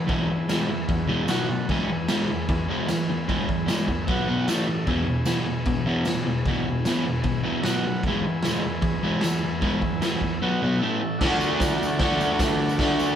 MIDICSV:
0, 0, Header, 1, 4, 480
1, 0, Start_track
1, 0, Key_signature, 4, "major"
1, 0, Tempo, 396563
1, 122, Time_signature, 4, 2, 24, 8
1, 15923, End_track
2, 0, Start_track
2, 0, Title_t, "Transistor combo organ"
2, 0, Program_c, 0, 18
2, 0, Note_on_c, 0, 68, 74
2, 0, Note_on_c, 0, 71, 67
2, 0, Note_on_c, 0, 76, 74
2, 1335, Note_off_c, 0, 76, 0
2, 1349, Note_on_c, 0, 76, 75
2, 1510, Note_off_c, 0, 71, 0
2, 1513, Note_off_c, 0, 68, 0
2, 1564, Note_off_c, 0, 76, 0
2, 1567, Note_on_c, 0, 71, 73
2, 1567, Note_on_c, 0, 78, 92
2, 1569, Note_on_c, 0, 66, 82
2, 1811, Note_on_c, 0, 81, 71
2, 2035, Note_off_c, 0, 81, 0
2, 2049, Note_on_c, 0, 68, 71
2, 2051, Note_off_c, 0, 71, 0
2, 2051, Note_off_c, 0, 78, 0
2, 2052, Note_off_c, 0, 66, 0
2, 2069, Note_on_c, 0, 71, 74
2, 2076, Note_on_c, 0, 76, 88
2, 4887, Note_off_c, 0, 68, 0
2, 4897, Note_off_c, 0, 71, 0
2, 4901, Note_off_c, 0, 76, 0
2, 4965, Note_on_c, 0, 71, 73
2, 4976, Note_on_c, 0, 78, 96
2, 4981, Note_on_c, 0, 66, 76
2, 5424, Note_on_c, 0, 76, 86
2, 5426, Note_on_c, 0, 69, 78
2, 5430, Note_off_c, 0, 71, 0
2, 5431, Note_on_c, 0, 64, 74
2, 5436, Note_off_c, 0, 78, 0
2, 5439, Note_off_c, 0, 66, 0
2, 5897, Note_on_c, 0, 68, 72
2, 5900, Note_off_c, 0, 76, 0
2, 5901, Note_off_c, 0, 69, 0
2, 5901, Note_on_c, 0, 71, 68
2, 5903, Note_off_c, 0, 64, 0
2, 5926, Note_on_c, 0, 76, 79
2, 9200, Note_off_c, 0, 68, 0
2, 9202, Note_off_c, 0, 71, 0
2, 9214, Note_off_c, 0, 76, 0
2, 9248, Note_on_c, 0, 66, 78
2, 9254, Note_on_c, 0, 71, 72
2, 9254, Note_on_c, 0, 78, 92
2, 9727, Note_off_c, 0, 66, 0
2, 9730, Note_off_c, 0, 71, 0
2, 9730, Note_off_c, 0, 78, 0
2, 9765, Note_on_c, 0, 71, 73
2, 9767, Note_on_c, 0, 68, 74
2, 9776, Note_on_c, 0, 76, 93
2, 12576, Note_off_c, 0, 71, 0
2, 12577, Note_off_c, 0, 68, 0
2, 12581, Note_off_c, 0, 76, 0
2, 12607, Note_on_c, 0, 71, 75
2, 12612, Note_on_c, 0, 78, 84
2, 12622, Note_on_c, 0, 66, 77
2, 13065, Note_on_c, 0, 76, 86
2, 13066, Note_on_c, 0, 69, 69
2, 13076, Note_on_c, 0, 64, 78
2, 13086, Note_off_c, 0, 71, 0
2, 13088, Note_off_c, 0, 78, 0
2, 13093, Note_off_c, 0, 66, 0
2, 13532, Note_on_c, 0, 66, 83
2, 13537, Note_off_c, 0, 69, 0
2, 13544, Note_on_c, 0, 74, 86
2, 13552, Note_on_c, 0, 69, 72
2, 13556, Note_off_c, 0, 76, 0
2, 13560, Note_off_c, 0, 64, 0
2, 15923, Note_off_c, 0, 66, 0
2, 15923, Note_off_c, 0, 69, 0
2, 15923, Note_off_c, 0, 74, 0
2, 15923, End_track
3, 0, Start_track
3, 0, Title_t, "Overdriven electric guitar"
3, 0, Program_c, 1, 29
3, 93, Note_on_c, 1, 40, 93
3, 101, Note_on_c, 1, 52, 98
3, 114, Note_on_c, 1, 56, 94
3, 335, Note_off_c, 1, 40, 0
3, 339, Note_off_c, 1, 52, 0
3, 345, Note_off_c, 1, 56, 0
3, 373, Note_on_c, 1, 40, 69
3, 380, Note_on_c, 1, 52, 78
3, 583, Note_off_c, 1, 40, 0
3, 589, Note_off_c, 1, 52, 0
3, 598, Note_on_c, 1, 40, 101
3, 613, Note_on_c, 1, 52, 93
3, 623, Note_on_c, 1, 56, 102
3, 828, Note_off_c, 1, 40, 0
3, 836, Note_off_c, 1, 52, 0
3, 841, Note_off_c, 1, 56, 0
3, 852, Note_on_c, 1, 40, 77
3, 857, Note_on_c, 1, 52, 76
3, 1057, Note_off_c, 1, 40, 0
3, 1069, Note_off_c, 1, 52, 0
3, 1071, Note_on_c, 1, 40, 78
3, 1081, Note_on_c, 1, 52, 92
3, 1288, Note_off_c, 1, 40, 0
3, 1302, Note_off_c, 1, 52, 0
3, 1303, Note_on_c, 1, 40, 98
3, 1320, Note_on_c, 1, 52, 119
3, 1324, Note_on_c, 1, 56, 103
3, 1539, Note_off_c, 1, 40, 0
3, 1544, Note_on_c, 1, 47, 106
3, 1546, Note_off_c, 1, 56, 0
3, 1551, Note_off_c, 1, 52, 0
3, 1551, Note_on_c, 1, 54, 106
3, 1556, Note_on_c, 1, 59, 93
3, 1779, Note_off_c, 1, 47, 0
3, 1787, Note_off_c, 1, 54, 0
3, 1790, Note_off_c, 1, 59, 0
3, 1794, Note_on_c, 1, 47, 76
3, 1801, Note_on_c, 1, 54, 86
3, 2019, Note_off_c, 1, 47, 0
3, 2023, Note_off_c, 1, 54, 0
3, 2049, Note_on_c, 1, 40, 94
3, 2065, Note_on_c, 1, 52, 84
3, 2069, Note_on_c, 1, 56, 112
3, 2277, Note_off_c, 1, 40, 0
3, 2280, Note_off_c, 1, 52, 0
3, 2287, Note_off_c, 1, 56, 0
3, 2294, Note_on_c, 1, 52, 92
3, 2295, Note_on_c, 1, 40, 76
3, 2510, Note_off_c, 1, 52, 0
3, 2511, Note_off_c, 1, 40, 0
3, 2529, Note_on_c, 1, 40, 99
3, 2539, Note_on_c, 1, 52, 97
3, 2541, Note_on_c, 1, 56, 110
3, 2758, Note_off_c, 1, 40, 0
3, 2763, Note_off_c, 1, 52, 0
3, 2764, Note_off_c, 1, 56, 0
3, 2773, Note_on_c, 1, 40, 74
3, 2791, Note_on_c, 1, 52, 73
3, 2990, Note_off_c, 1, 40, 0
3, 2999, Note_off_c, 1, 52, 0
3, 3013, Note_on_c, 1, 40, 80
3, 3024, Note_on_c, 1, 52, 84
3, 3231, Note_off_c, 1, 40, 0
3, 3236, Note_off_c, 1, 52, 0
3, 3250, Note_on_c, 1, 40, 90
3, 3271, Note_on_c, 1, 52, 109
3, 3272, Note_on_c, 1, 56, 122
3, 3479, Note_off_c, 1, 40, 0
3, 3490, Note_off_c, 1, 52, 0
3, 3490, Note_off_c, 1, 56, 0
3, 3504, Note_on_c, 1, 52, 95
3, 3505, Note_on_c, 1, 40, 75
3, 3716, Note_off_c, 1, 52, 0
3, 3717, Note_off_c, 1, 40, 0
3, 3744, Note_on_c, 1, 40, 71
3, 3748, Note_on_c, 1, 52, 84
3, 3957, Note_off_c, 1, 40, 0
3, 3959, Note_off_c, 1, 52, 0
3, 3971, Note_on_c, 1, 40, 85
3, 3978, Note_on_c, 1, 56, 104
3, 3979, Note_on_c, 1, 52, 90
3, 4200, Note_off_c, 1, 40, 0
3, 4203, Note_off_c, 1, 52, 0
3, 4203, Note_off_c, 1, 56, 0
3, 4221, Note_on_c, 1, 40, 74
3, 4230, Note_on_c, 1, 52, 84
3, 4425, Note_off_c, 1, 40, 0
3, 4439, Note_on_c, 1, 40, 96
3, 4440, Note_off_c, 1, 52, 0
3, 4465, Note_on_c, 1, 56, 95
3, 4466, Note_on_c, 1, 52, 94
3, 4674, Note_off_c, 1, 40, 0
3, 4687, Note_off_c, 1, 52, 0
3, 4687, Note_off_c, 1, 56, 0
3, 4701, Note_on_c, 1, 40, 66
3, 4705, Note_on_c, 1, 52, 68
3, 4915, Note_off_c, 1, 40, 0
3, 4917, Note_off_c, 1, 52, 0
3, 4931, Note_on_c, 1, 47, 93
3, 4947, Note_on_c, 1, 54, 112
3, 4948, Note_on_c, 1, 59, 103
3, 5160, Note_off_c, 1, 47, 0
3, 5167, Note_off_c, 1, 54, 0
3, 5168, Note_off_c, 1, 59, 0
3, 5180, Note_on_c, 1, 47, 108
3, 5189, Note_on_c, 1, 54, 104
3, 5195, Note_on_c, 1, 59, 111
3, 5404, Note_off_c, 1, 47, 0
3, 5408, Note_off_c, 1, 54, 0
3, 5412, Note_off_c, 1, 59, 0
3, 5414, Note_on_c, 1, 45, 99
3, 5430, Note_on_c, 1, 57, 102
3, 5431, Note_on_c, 1, 52, 103
3, 5641, Note_off_c, 1, 45, 0
3, 5649, Note_off_c, 1, 52, 0
3, 5649, Note_off_c, 1, 57, 0
3, 5655, Note_on_c, 1, 45, 72
3, 5664, Note_on_c, 1, 52, 88
3, 5872, Note_off_c, 1, 45, 0
3, 5876, Note_off_c, 1, 52, 0
3, 5889, Note_on_c, 1, 40, 94
3, 5904, Note_on_c, 1, 47, 98
3, 5923, Note_on_c, 1, 52, 96
3, 6106, Note_off_c, 1, 40, 0
3, 6108, Note_off_c, 1, 47, 0
3, 6120, Note_on_c, 1, 40, 72
3, 6123, Note_on_c, 1, 47, 83
3, 6135, Note_off_c, 1, 52, 0
3, 6344, Note_off_c, 1, 40, 0
3, 6345, Note_off_c, 1, 47, 0
3, 6366, Note_on_c, 1, 40, 101
3, 6373, Note_on_c, 1, 47, 106
3, 6379, Note_on_c, 1, 52, 105
3, 6593, Note_off_c, 1, 47, 0
3, 6596, Note_off_c, 1, 40, 0
3, 6602, Note_off_c, 1, 52, 0
3, 6607, Note_on_c, 1, 47, 70
3, 6612, Note_on_c, 1, 40, 61
3, 6826, Note_off_c, 1, 47, 0
3, 6829, Note_off_c, 1, 40, 0
3, 6857, Note_on_c, 1, 40, 85
3, 6866, Note_on_c, 1, 47, 98
3, 7071, Note_off_c, 1, 40, 0
3, 7076, Note_off_c, 1, 47, 0
3, 7094, Note_on_c, 1, 40, 99
3, 7102, Note_on_c, 1, 47, 102
3, 7109, Note_on_c, 1, 52, 110
3, 7319, Note_off_c, 1, 40, 0
3, 7323, Note_off_c, 1, 47, 0
3, 7326, Note_off_c, 1, 52, 0
3, 7350, Note_on_c, 1, 40, 74
3, 7364, Note_on_c, 1, 47, 97
3, 7557, Note_off_c, 1, 40, 0
3, 7564, Note_off_c, 1, 47, 0
3, 7576, Note_on_c, 1, 47, 69
3, 7580, Note_on_c, 1, 40, 83
3, 7790, Note_off_c, 1, 47, 0
3, 7792, Note_off_c, 1, 40, 0
3, 7831, Note_on_c, 1, 40, 101
3, 7838, Note_on_c, 1, 47, 88
3, 7852, Note_on_c, 1, 52, 96
3, 8046, Note_off_c, 1, 40, 0
3, 8050, Note_off_c, 1, 47, 0
3, 8057, Note_off_c, 1, 52, 0
3, 8080, Note_on_c, 1, 40, 84
3, 8092, Note_on_c, 1, 47, 89
3, 8281, Note_off_c, 1, 40, 0
3, 8287, Note_off_c, 1, 47, 0
3, 8313, Note_on_c, 1, 47, 98
3, 8314, Note_on_c, 1, 40, 94
3, 8335, Note_on_c, 1, 52, 113
3, 8527, Note_off_c, 1, 40, 0
3, 8527, Note_off_c, 1, 47, 0
3, 8538, Note_off_c, 1, 52, 0
3, 8546, Note_on_c, 1, 47, 70
3, 8547, Note_on_c, 1, 40, 70
3, 8746, Note_off_c, 1, 47, 0
3, 8748, Note_off_c, 1, 40, 0
3, 8761, Note_on_c, 1, 47, 94
3, 8763, Note_on_c, 1, 40, 82
3, 8980, Note_off_c, 1, 47, 0
3, 8981, Note_off_c, 1, 40, 0
3, 9004, Note_on_c, 1, 40, 106
3, 9012, Note_on_c, 1, 52, 110
3, 9017, Note_on_c, 1, 47, 108
3, 9231, Note_off_c, 1, 40, 0
3, 9235, Note_off_c, 1, 52, 0
3, 9238, Note_off_c, 1, 47, 0
3, 9254, Note_on_c, 1, 47, 94
3, 9265, Note_on_c, 1, 54, 106
3, 9283, Note_on_c, 1, 59, 104
3, 9476, Note_off_c, 1, 47, 0
3, 9482, Note_off_c, 1, 54, 0
3, 9491, Note_off_c, 1, 59, 0
3, 9514, Note_on_c, 1, 47, 73
3, 9525, Note_on_c, 1, 54, 87
3, 9716, Note_off_c, 1, 47, 0
3, 9722, Note_off_c, 1, 54, 0
3, 9767, Note_on_c, 1, 40, 91
3, 9777, Note_on_c, 1, 52, 94
3, 9786, Note_on_c, 1, 56, 103
3, 9968, Note_off_c, 1, 52, 0
3, 9972, Note_off_c, 1, 40, 0
3, 9982, Note_off_c, 1, 56, 0
3, 9983, Note_on_c, 1, 52, 88
3, 9986, Note_on_c, 1, 40, 74
3, 10190, Note_off_c, 1, 52, 0
3, 10192, Note_off_c, 1, 40, 0
3, 10217, Note_on_c, 1, 40, 94
3, 10227, Note_on_c, 1, 52, 99
3, 10239, Note_on_c, 1, 56, 106
3, 10430, Note_off_c, 1, 40, 0
3, 10442, Note_off_c, 1, 52, 0
3, 10445, Note_on_c, 1, 40, 62
3, 10448, Note_off_c, 1, 56, 0
3, 10455, Note_on_c, 1, 52, 67
3, 10655, Note_off_c, 1, 40, 0
3, 10660, Note_off_c, 1, 52, 0
3, 10670, Note_on_c, 1, 40, 80
3, 10675, Note_on_c, 1, 52, 86
3, 10893, Note_off_c, 1, 40, 0
3, 10896, Note_off_c, 1, 52, 0
3, 10929, Note_on_c, 1, 40, 96
3, 10937, Note_on_c, 1, 52, 116
3, 10943, Note_on_c, 1, 56, 123
3, 11153, Note_off_c, 1, 40, 0
3, 11157, Note_off_c, 1, 52, 0
3, 11160, Note_off_c, 1, 56, 0
3, 11182, Note_on_c, 1, 40, 77
3, 11183, Note_on_c, 1, 52, 84
3, 11390, Note_off_c, 1, 40, 0
3, 11390, Note_off_c, 1, 52, 0
3, 11417, Note_on_c, 1, 40, 72
3, 11418, Note_on_c, 1, 52, 69
3, 11623, Note_off_c, 1, 40, 0
3, 11627, Note_off_c, 1, 52, 0
3, 11637, Note_on_c, 1, 40, 100
3, 11649, Note_on_c, 1, 52, 107
3, 11653, Note_on_c, 1, 56, 100
3, 11867, Note_off_c, 1, 40, 0
3, 11867, Note_off_c, 1, 52, 0
3, 11875, Note_off_c, 1, 56, 0
3, 11881, Note_on_c, 1, 52, 88
3, 11883, Note_on_c, 1, 40, 81
3, 12099, Note_off_c, 1, 52, 0
3, 12100, Note_off_c, 1, 40, 0
3, 12126, Note_on_c, 1, 40, 98
3, 12126, Note_on_c, 1, 52, 102
3, 12136, Note_on_c, 1, 56, 95
3, 12351, Note_off_c, 1, 40, 0
3, 12351, Note_off_c, 1, 52, 0
3, 12356, Note_off_c, 1, 56, 0
3, 12381, Note_on_c, 1, 52, 76
3, 12386, Note_on_c, 1, 40, 63
3, 12589, Note_off_c, 1, 52, 0
3, 12591, Note_off_c, 1, 40, 0
3, 12610, Note_on_c, 1, 47, 97
3, 12615, Note_on_c, 1, 54, 98
3, 12618, Note_on_c, 1, 59, 103
3, 12833, Note_off_c, 1, 47, 0
3, 12836, Note_off_c, 1, 54, 0
3, 12837, Note_off_c, 1, 59, 0
3, 12850, Note_on_c, 1, 47, 101
3, 12867, Note_on_c, 1, 54, 111
3, 12879, Note_on_c, 1, 59, 122
3, 13073, Note_off_c, 1, 47, 0
3, 13082, Note_off_c, 1, 54, 0
3, 13088, Note_off_c, 1, 59, 0
3, 13088, Note_on_c, 1, 45, 95
3, 13104, Note_on_c, 1, 52, 110
3, 13117, Note_on_c, 1, 57, 103
3, 13312, Note_off_c, 1, 45, 0
3, 13320, Note_off_c, 1, 52, 0
3, 13327, Note_off_c, 1, 57, 0
3, 13336, Note_on_c, 1, 45, 76
3, 13347, Note_on_c, 1, 52, 75
3, 13546, Note_off_c, 1, 45, 0
3, 13552, Note_off_c, 1, 52, 0
3, 13573, Note_on_c, 1, 50, 111
3, 13594, Note_on_c, 1, 57, 103
3, 13606, Note_on_c, 1, 62, 91
3, 13620, Note_on_c, 1, 66, 100
3, 14512, Note_off_c, 1, 50, 0
3, 14517, Note_on_c, 1, 50, 86
3, 14522, Note_off_c, 1, 57, 0
3, 14527, Note_on_c, 1, 57, 104
3, 14543, Note_off_c, 1, 62, 0
3, 14548, Note_on_c, 1, 62, 88
3, 14560, Note_off_c, 1, 66, 0
3, 14565, Note_on_c, 1, 66, 83
3, 15466, Note_off_c, 1, 50, 0
3, 15482, Note_off_c, 1, 62, 0
3, 15487, Note_on_c, 1, 50, 89
3, 15490, Note_off_c, 1, 66, 0
3, 15498, Note_off_c, 1, 57, 0
3, 15502, Note_on_c, 1, 57, 102
3, 15523, Note_on_c, 1, 62, 109
3, 15527, Note_on_c, 1, 66, 97
3, 15923, Note_off_c, 1, 50, 0
3, 15923, Note_off_c, 1, 57, 0
3, 15923, Note_off_c, 1, 62, 0
3, 15923, Note_off_c, 1, 66, 0
3, 15923, End_track
4, 0, Start_track
4, 0, Title_t, "Drums"
4, 106, Note_on_c, 9, 49, 54
4, 109, Note_on_c, 9, 36, 106
4, 227, Note_off_c, 9, 49, 0
4, 230, Note_off_c, 9, 36, 0
4, 597, Note_on_c, 9, 54, 93
4, 599, Note_on_c, 9, 38, 120
4, 599, Note_on_c, 9, 49, 62
4, 718, Note_off_c, 9, 54, 0
4, 720, Note_off_c, 9, 38, 0
4, 720, Note_off_c, 9, 49, 0
4, 1071, Note_on_c, 9, 49, 62
4, 1076, Note_on_c, 9, 36, 115
4, 1192, Note_off_c, 9, 49, 0
4, 1197, Note_off_c, 9, 36, 0
4, 1550, Note_on_c, 9, 54, 90
4, 1559, Note_on_c, 9, 38, 121
4, 1559, Note_on_c, 9, 49, 65
4, 1671, Note_off_c, 9, 54, 0
4, 1680, Note_off_c, 9, 38, 0
4, 1680, Note_off_c, 9, 49, 0
4, 2046, Note_on_c, 9, 36, 93
4, 2048, Note_on_c, 9, 49, 58
4, 2167, Note_off_c, 9, 36, 0
4, 2169, Note_off_c, 9, 49, 0
4, 2524, Note_on_c, 9, 38, 127
4, 2524, Note_on_c, 9, 49, 61
4, 2526, Note_on_c, 9, 54, 96
4, 2645, Note_off_c, 9, 38, 0
4, 2645, Note_off_c, 9, 49, 0
4, 2647, Note_off_c, 9, 54, 0
4, 3008, Note_on_c, 9, 49, 61
4, 3012, Note_on_c, 9, 36, 118
4, 3129, Note_off_c, 9, 49, 0
4, 3133, Note_off_c, 9, 36, 0
4, 3492, Note_on_c, 9, 38, 118
4, 3492, Note_on_c, 9, 49, 61
4, 3496, Note_on_c, 9, 54, 97
4, 3613, Note_off_c, 9, 38, 0
4, 3613, Note_off_c, 9, 49, 0
4, 3617, Note_off_c, 9, 54, 0
4, 3981, Note_on_c, 9, 36, 103
4, 3986, Note_on_c, 9, 49, 55
4, 4102, Note_off_c, 9, 36, 0
4, 4107, Note_off_c, 9, 49, 0
4, 4223, Note_on_c, 9, 36, 79
4, 4344, Note_off_c, 9, 36, 0
4, 4458, Note_on_c, 9, 38, 119
4, 4458, Note_on_c, 9, 49, 59
4, 4465, Note_on_c, 9, 54, 91
4, 4579, Note_off_c, 9, 38, 0
4, 4579, Note_off_c, 9, 49, 0
4, 4586, Note_off_c, 9, 54, 0
4, 4697, Note_on_c, 9, 36, 75
4, 4818, Note_off_c, 9, 36, 0
4, 4935, Note_on_c, 9, 49, 58
4, 4940, Note_on_c, 9, 36, 120
4, 5056, Note_off_c, 9, 49, 0
4, 5061, Note_off_c, 9, 36, 0
4, 5421, Note_on_c, 9, 38, 127
4, 5421, Note_on_c, 9, 49, 66
4, 5427, Note_on_c, 9, 54, 102
4, 5542, Note_off_c, 9, 38, 0
4, 5542, Note_off_c, 9, 49, 0
4, 5548, Note_off_c, 9, 54, 0
4, 5893, Note_on_c, 9, 49, 56
4, 5896, Note_on_c, 9, 36, 104
4, 6014, Note_off_c, 9, 49, 0
4, 6018, Note_off_c, 9, 36, 0
4, 6360, Note_on_c, 9, 54, 99
4, 6372, Note_on_c, 9, 38, 102
4, 6372, Note_on_c, 9, 49, 65
4, 6481, Note_off_c, 9, 54, 0
4, 6493, Note_off_c, 9, 38, 0
4, 6493, Note_off_c, 9, 49, 0
4, 6845, Note_on_c, 9, 49, 64
4, 6854, Note_on_c, 9, 36, 120
4, 6966, Note_off_c, 9, 49, 0
4, 6975, Note_off_c, 9, 36, 0
4, 7323, Note_on_c, 9, 54, 85
4, 7330, Note_on_c, 9, 38, 117
4, 7330, Note_on_c, 9, 49, 62
4, 7444, Note_off_c, 9, 54, 0
4, 7451, Note_off_c, 9, 38, 0
4, 7451, Note_off_c, 9, 49, 0
4, 7814, Note_on_c, 9, 36, 109
4, 7814, Note_on_c, 9, 49, 51
4, 7935, Note_off_c, 9, 36, 0
4, 7935, Note_off_c, 9, 49, 0
4, 8295, Note_on_c, 9, 38, 105
4, 8295, Note_on_c, 9, 49, 63
4, 8302, Note_on_c, 9, 54, 84
4, 8416, Note_off_c, 9, 38, 0
4, 8416, Note_off_c, 9, 49, 0
4, 8423, Note_off_c, 9, 54, 0
4, 8759, Note_on_c, 9, 49, 56
4, 8768, Note_on_c, 9, 36, 108
4, 8880, Note_off_c, 9, 49, 0
4, 8889, Note_off_c, 9, 36, 0
4, 9242, Note_on_c, 9, 38, 126
4, 9242, Note_on_c, 9, 49, 70
4, 9271, Note_on_c, 9, 54, 92
4, 9363, Note_off_c, 9, 38, 0
4, 9363, Note_off_c, 9, 49, 0
4, 9392, Note_off_c, 9, 54, 0
4, 9725, Note_on_c, 9, 36, 98
4, 9725, Note_on_c, 9, 49, 57
4, 9846, Note_off_c, 9, 36, 0
4, 9846, Note_off_c, 9, 49, 0
4, 10198, Note_on_c, 9, 38, 112
4, 10198, Note_on_c, 9, 49, 68
4, 10229, Note_on_c, 9, 54, 90
4, 10319, Note_off_c, 9, 38, 0
4, 10319, Note_off_c, 9, 49, 0
4, 10350, Note_off_c, 9, 54, 0
4, 10677, Note_on_c, 9, 49, 58
4, 10679, Note_on_c, 9, 36, 114
4, 10798, Note_off_c, 9, 49, 0
4, 10800, Note_off_c, 9, 36, 0
4, 11149, Note_on_c, 9, 38, 125
4, 11149, Note_on_c, 9, 49, 68
4, 11181, Note_on_c, 9, 54, 89
4, 11270, Note_off_c, 9, 38, 0
4, 11270, Note_off_c, 9, 49, 0
4, 11302, Note_off_c, 9, 54, 0
4, 11643, Note_on_c, 9, 49, 54
4, 11644, Note_on_c, 9, 36, 101
4, 11764, Note_off_c, 9, 49, 0
4, 11765, Note_off_c, 9, 36, 0
4, 11886, Note_on_c, 9, 36, 81
4, 12007, Note_off_c, 9, 36, 0
4, 12129, Note_on_c, 9, 38, 108
4, 12129, Note_on_c, 9, 49, 66
4, 12136, Note_on_c, 9, 54, 83
4, 12250, Note_off_c, 9, 38, 0
4, 12250, Note_off_c, 9, 49, 0
4, 12257, Note_off_c, 9, 54, 0
4, 12363, Note_on_c, 9, 36, 68
4, 12484, Note_off_c, 9, 36, 0
4, 13567, Note_on_c, 9, 36, 122
4, 13572, Note_on_c, 9, 38, 110
4, 13572, Note_on_c, 9, 57, 109
4, 13584, Note_on_c, 9, 54, 30
4, 13688, Note_off_c, 9, 36, 0
4, 13693, Note_off_c, 9, 38, 0
4, 13693, Note_off_c, 9, 57, 0
4, 13705, Note_off_c, 9, 54, 0
4, 13808, Note_on_c, 9, 54, 82
4, 13929, Note_off_c, 9, 54, 0
4, 14042, Note_on_c, 9, 38, 127
4, 14042, Note_on_c, 9, 46, 72
4, 14046, Note_on_c, 9, 36, 112
4, 14058, Note_on_c, 9, 54, 98
4, 14163, Note_off_c, 9, 38, 0
4, 14163, Note_off_c, 9, 46, 0
4, 14167, Note_off_c, 9, 36, 0
4, 14179, Note_off_c, 9, 54, 0
4, 14315, Note_on_c, 9, 54, 83
4, 14436, Note_off_c, 9, 54, 0
4, 14519, Note_on_c, 9, 38, 117
4, 14519, Note_on_c, 9, 46, 74
4, 14522, Note_on_c, 9, 36, 127
4, 14540, Note_on_c, 9, 54, 32
4, 14640, Note_off_c, 9, 38, 0
4, 14640, Note_off_c, 9, 46, 0
4, 14643, Note_off_c, 9, 36, 0
4, 14661, Note_off_c, 9, 54, 0
4, 14774, Note_on_c, 9, 54, 78
4, 14895, Note_off_c, 9, 54, 0
4, 15001, Note_on_c, 9, 36, 121
4, 15005, Note_on_c, 9, 38, 127
4, 15005, Note_on_c, 9, 46, 67
4, 15006, Note_on_c, 9, 54, 93
4, 15122, Note_off_c, 9, 36, 0
4, 15126, Note_off_c, 9, 38, 0
4, 15126, Note_off_c, 9, 46, 0
4, 15127, Note_off_c, 9, 54, 0
4, 15363, Note_on_c, 9, 54, 66
4, 15480, Note_on_c, 9, 36, 116
4, 15484, Note_off_c, 9, 54, 0
4, 15488, Note_on_c, 9, 38, 98
4, 15488, Note_on_c, 9, 46, 61
4, 15501, Note_on_c, 9, 54, 30
4, 15601, Note_off_c, 9, 36, 0
4, 15609, Note_off_c, 9, 38, 0
4, 15609, Note_off_c, 9, 46, 0
4, 15623, Note_off_c, 9, 54, 0
4, 15729, Note_on_c, 9, 54, 81
4, 15850, Note_off_c, 9, 54, 0
4, 15923, End_track
0, 0, End_of_file